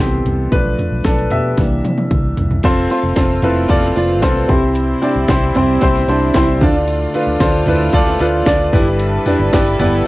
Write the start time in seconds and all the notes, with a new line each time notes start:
Already playing: E3 B3 D4 E4 A4 C5
0.00 C2 C4 G4
0.25 C2, closed hi-hat, floor tom
0.52 B1 F3 A3 D4 B4, kick, closed hi-hat
0.79 closed hi-hat, floor tom
0.91 B1
1.04 B1 D4 A4, kick, snare, closed hi-hat
1.18 closed hi-hat
1.30 B2 G4 E5, closed hi-hat, floor tom
1.57 C2 E3 A#3 D4, kick, snare, closed hi-hat
1.84 C3, closed hi-hat, high tom
1.98 high tom
2.11 C2, kick, closed hi-hat, mid tom
2.37 C2, closed hi-hat, floor tom
2.51 floor tom
2.63 F1 A3 C4 F4 A4 C5, kick, closed hi-hat, crash
2.90 C4 F4 A4 C5, closed hi-hat
3.03 F1
3.16 F1 C4 F4 A4 C5, kick, snare, closed hi-hat
3.42 F1 C4 E4 F4 A4 B4, closed hi-hat, floor tom
3.69 F1 C4 F4 A4 D5, kick, closed hi-hat
3.83 snare, closed hi-hat
3.96 F1 C4 F4 A4 D5, closed hi-hat
4.22 C2 C4 F4 A4 C5, kick, snare, closed hi-hat
4.48 C2 C3 G3 C4 E4 G4 C5, kick, closed hi-hat, floor tom
4.75 closed hi-hat
5.02 C4 D4 E4 G4 D5, closed hi-hat
5.16 C2
5.28 C2 C4 E4 G4 C5, kick, snare, closed hi-hat
5.55 C2 C4 E4 G4 C5, closed hi-hat, floor tom
5.81 C2 C4 E4 G4 C5, kick, closed hi-hat
5.95 snare, closed hi-hat
6.08 C2 C4 D4 E4 G4 C5 A5, closed hi-hat
6.34 C2 C4 E4 G4 C5 G5, kick, snare, closed hi-hat
6.60 D2 D3 A3 D4 F4 A4 D5 F5, kick, closed hi-hat, floor tom
6.87 closed hi-hat, tambourine
7.14 D4 F4 A4 B4, closed hi-hat, tambourine
7.27 D2
7.40 D2 D4 F4 A4 C5, kick, snare, closed hi-hat, tambourine
7.66 D2 D4 E4 F4 A4 B4, closed hi-hat, floor tom, tambourine
7.92 D2 D4 F4 A4 D5, kick, closed hi-hat, tambourine
8.07 snare, closed hi-hat
8.20 D2 D4 F4 A4 B4, closed hi-hat, tambourine
8.46 D2 D4 F4 A4 D5, kick, snare, closed hi-hat, tambourine
8.72 G1 G2 G3 E4 G4 A4 B4 D5, kick, closed hi-hat, floor tom, tambourine
9.00 closed hi-hat, tambourine
9.26 D4 E4 G4 B4 D5, closed hi-hat, floor tom, tambourine
9.39 G1
9.53 G1 E4 G4 B4 D5, kick, snare, closed hi-hat, tambourine
9.67 closed hi-hat
9.79 G1 B3 E4 G4 B4 D5, closed hi-hat, floor tom, tambourine